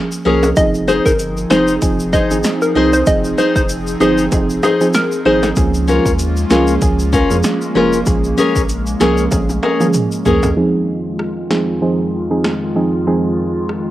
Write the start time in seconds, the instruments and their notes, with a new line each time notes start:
0.12 shaker
0.25 sub bass C2, synth pluck F3 A#3 C#4 G#4, nylon-string guitar C#4 G#4 A#4
0.43 high timbale, shaker
0.56 sub bass F1, synth pluck F3 C4 D#4 G#4 D#5, analog synth pad F3 C4 D#4 G#4, kick, closed hi-hat, shaker
0.74 shaker
0.88 nylon-string guitar D#4 G#4 C5, synth pluck C5, shaker
1.06 sub bass G1, synth pluck A#4, kick, shaker
1.19 closed hi-hat, shaker
1.37 shaker
1.50 sub bass F1, synth pluck F3 C4 D#4 G#4 C5, nylon-string guitar D#4 G#4 C5, snare, shaker
1.68 shaker
1.82 sub bass F1, synth pluck F3 C4 D#4 G#4, kick, closed hi-hat, shaker
2.00 shaker
2.13 nylon-string guitar D#4 G#4 C5, synth pluck D#5, kick, shaker
2.30 sub bass G#1, synth pluck F3 C4 D#4 G#4, shaker
2.43 snare, closed hi-hat, shaker
2.62 synth pluck A#4, shaker
2.75 sub bass C2, synth pluck F3 C4 D#4 G#4, nylon-string guitar D#4 G#4 C5
2.93 synth pluck C5, shaker
3.06 sub bass F1, synth pluck F3 C4 D#4 G#4 D#5, kick, closed hi-hat, shaker
3.24 shaker
3.38 nylon-string guitar D#4 G#4 C5, synth pluck C5, shaker
3.56 sub bass F1, synth pluck C5, kick, shaker
3.69 closed hi-hat, shaker
3.87 shaker
4.00 sub bass G1, synth pluck F3 C4 D#4 G#4, nylon-string guitar D#4 G#4 C5, shaker
4.18 shaker
4.32 sub bass F1, synth pluck F3 C4 D#4 G#4, kick, closed hi-hat, high timbale, shaker
4.49 shaker
4.63 nylon-string guitar D#4 G#4 C5, synth pluck G#4, high timbale, shaker
4.80 synth pluck F3 C4 D#4 G#4, shaker
4.93 synth pluck A#4, snare, closed hi-hat, shaker
5.11 shaker
5.25 sub bass G#1, synth pluck F3 C4 D#4 G#4 C5, nylon-string guitar D#4 G#4 C5
5.43 snare, high timbale, shaker
5.56 sub bass C#2, synth pluck F3 A#3 C#4 G#4, analog synth pad G#3 A#3 C#4 F4, kick, closed hi-hat, shaker
5.74 shaker
5.88 nylon-string guitar C#4 F4 A#4, shaker
6.06 sub bass D#2, kick, shaker
6.19 closed hi-hat, shaker
6.37 shaker
6.50 sub bass C#2, synth pluck F3 A#3 C#4 G#4, nylon-string guitar C#4 F4 A#4, snare, shaker
6.67 shaker
6.81 sub bass C#2, synth pluck F3 A#3 C#4 G#4, kick, closed hi-hat, shaker
6.99 shaker
7.13 nylon-string guitar C#4 F4 A#4, kick, shaker
7.30 sub bass F2, synth pluck F3 A#3 C#4 G#4, shaker
7.43 snare, closed hi-hat, shaker
7.62 shaker
7.75 sub bass F1, synth pluck F3 A#3 C#4 G#4, nylon-string guitar C#4 F4 A#4
7.93 shaker
8.06 sub bass A#1, synth pluck F3 A#3 C#4 G#4, kick, closed hi-hat, shaker
8.24 shaker
8.38 nylon-string guitar C#4 G#4 A#4, shaker
8.56 sub bass A#1, kick, shaker
8.69 closed hi-hat, shaker
8.87 shaker
9.00 sub bass C2, synth pluck F3 A#3 C#4 G#4, nylon-string guitar C#4 G#4 A#4, snare, shaker
9.17 shaker
9.31 sub bass A#1, synth pluck F3 A#3 C#4 G#4, kick, closed hi-hat, high tom, high timbale, shaker
9.49 high tom, shaker
9.63 nylon-string guitar C#4 G#4 A#4, high timbale
9.80 synth pluck F3 A#3 C#4 G#4, mid tom, shaker
9.93 closed hi-hat, mid tom, shaker
10.12 shaker
10.25 sub bass C2, synth pluck F3 A#3 C#4 G#4, nylon-string guitar C#4 G#4 A#4, floor tom, shaker
10.43 floor tom, high timbale, shaker
10.57 analog synth pad F2 D#3 G#3 F4, synth pluck F3 C4 D#4 G#4
11.19 cross-stick
11.50 synth pluck F3 C4 D#4 G#4, snare
11.82 synth pluck F3 C4 D#4 G#4
12.30 synth pluck F3 C4 D#4 G#4
12.44 cross-stick, snare
12.75 synth pluck F3 C4 D#4 G#4
13.07 synth pluck F3 C4 D#4 G#4
13.69 cross-stick